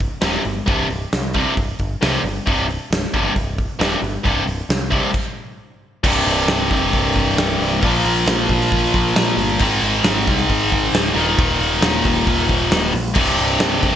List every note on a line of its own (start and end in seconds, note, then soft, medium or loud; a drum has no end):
0.00 kick medium
0.00 open hi-hat soft
0.21 0.37 D#1 medium
0.21 0.40 C2 loud
0.21 0.40 G2 loud
0.21 0.41 C3 medium
0.21 snare loud
0.21 open hi-hat medium
0.45 0.60 G1 medium
0.45 open hi-hat soft
0.66 0.83 C1 medium
0.66 0.85 C2 medium
0.66 0.85 G2 medium
0.66 0.85 C3 medium
0.66 kick loud
0.66 open hi-hat medium
0.90 1.05 C1 medium
0.90 open hi-hat soft
1.13 1.43 C2 medium
1.13 snare loud
1.13 open hi-hat medium
1.33 1.52 C2 medium
1.33 1.52 G2 medium
1.33 1.53 C3 medium
1.33 kick medium
1.33 open hi-hat medium
1.57 1.72 C1 medium
1.57 kick medium
1.57 open hi-hat medium
1.79 1.94 G1 medium
1.79 kick medium
1.79 open hi-hat soft
2.01 2.19 C2 medium
2.01 2.17 C2 medium
2.01 2.19 G2 loud
2.01 2.20 C3 loud
2.01 snare loud
2.01 open hi-hat medium
2.24 2.39 G1 medium
2.24 open hi-hat soft
2.46 2.77 C1 medium
2.46 2.64 C2 medium
2.46 2.64 G2 loud
2.46 2.65 C3 medium
2.46 kick loud
2.46 open hi-hat medium
2.71 open hi-hat soft
2.91 3.06 C1 medium
2.91 snare loud
2.91 open hi-hat medium
3.04 snare soft
3.14 3.29 G1 medium
3.14 3.31 C2 medium
3.14 3.32 G2 medium
3.14 3.32 C3 medium
3.14 kick medium
3.14 open hi-hat soft
3.36 3.66 C1 medium
3.36 kick medium
3.36 open hi-hat medium
3.58 kick medium
3.58 open hi-hat soft
3.79 3.95 D#1 medium
3.79 3.97 C2 medium
3.79 3.98 G2 medium
3.79 3.98 C3 medium
3.79 snare loud
3.79 open hi-hat medium
4.02 4.17 G1 medium
4.02 open hi-hat soft
4.24 4.40 C1 medium
4.24 4.42 C2 medium
4.24 4.43 G2 medium
4.24 4.43 C3 medium
4.24 kick loud
4.24 open hi-hat medium
4.46 4.61 C1 medium
4.46 open hi-hat medium
4.69 4.99 C2 medium
4.69 snare loud
4.69 open hi-hat medium
4.91 5.09 C2 medium
4.91 5.09 G2 medium
4.91 5.09 C3 medium
4.91 kick medium
4.91 open hi-hat medium
5.14 kick loud
5.14 crash medium
6.03 6.24 C1 medium
6.03 7.80 C2 medium
6.03 7.81 G2 medium
6.03 7.81 C3 loud
6.03 kick loud
6.03 crash loud
6.25 6.46 C1 loud
6.25 open hi-hat medium
6.47 6.68 C1 medium
6.47 snare loud
6.47 open hi-hat medium
6.70 6.91 F1 medium
6.70 kick medium
6.70 open hi-hat medium
6.93 7.14 C1 medium
6.93 kick medium
6.93 open hi-hat medium
7.16 7.36 C1 medium
7.16 kick medium
7.16 open hi-hat medium
7.37 7.58 C1 medium
7.37 snare loud
7.37 open hi-hat medium
7.59 7.80 C1 medium
7.59 open hi-hat medium
7.81 8.03 A#1 medium
7.81 9.58 A#2 medium
7.81 9.59 F3 loud
7.81 9.60 A#3 loud
7.81 kick loud
7.81 open hi-hat loud
8.04 8.25 A#1 medium
8.04 open hi-hat medium
8.27 8.47 A#1 loud
8.27 snare loud
8.27 open hi-hat loud
8.49 8.70 A#1 medium
8.49 kick medium
8.49 open hi-hat medium
8.60 snare soft
8.72 8.92 A#1 medium
8.72 kick medium
8.72 open hi-hat medium
8.94 9.14 A#1 loud
8.94 kick medium
8.94 open hi-hat medium
9.15 9.36 A#1 medium
9.15 snare loud
9.15 open hi-hat loud
9.37 9.58 G1 loud
9.37 open hi-hat medium
9.59 9.81 G#1 loud
9.59 11.13 G#2 medium
9.59 11.14 D#3 loud
9.59 11.15 G#3 loud
9.59 kick loud
9.59 crash loud
9.82 10.03 G#1 medium
9.82 open hi-hat medium
10.04 10.25 G#1 medium
10.04 snare loud
10.04 open hi-hat medium
10.27 10.48 C2 medium
10.27 kick medium
10.27 open hi-hat medium
10.50 10.70 G#1 medium
10.50 kick medium
10.50 open hi-hat medium
10.72 10.92 G#1 medium
10.72 kick medium
10.72 open hi-hat medium
10.93 11.14 D1 medium
10.93 snare loud
10.93 open hi-hat medium
11.14 11.36 D#1 medium
11.14 12.91 D#2 medium
11.14 12.92 A#2 loud
11.14 12.93 D#3 loud
11.14 open hi-hat medium
11.38 11.58 D#1 medium
11.38 kick loud
11.38 open hi-hat medium
11.59 11.80 D#1 medium
11.59 open hi-hat medium
11.81 12.02 D#1 medium
11.81 snare loud
11.81 open hi-hat medium
12.05 12.26 D#1 medium
12.05 kick medium
12.05 open hi-hat medium
12.27 12.48 D#1 medium
12.27 kick medium
12.27 open hi-hat medium
12.49 12.70 D#1 medium
12.49 kick medium
12.49 open hi-hat medium
12.71 12.92 D#1 medium
12.71 snare loud
12.71 open hi-hat medium
12.93 13.14 A#1 medium
12.93 open hi-hat medium
13.14 13.37 C1 medium
13.14 13.96 C2 medium
13.14 13.96 G2 medium
13.14 13.96 C3 loud
13.14 kick loud
13.14 crash loud
13.38 13.59 C1 medium
13.38 open hi-hat medium
13.60 13.82 C1 medium
13.60 snare loud
13.60 open hi-hat medium
13.83 13.96 F1 medium
13.83 kick medium
13.83 open hi-hat medium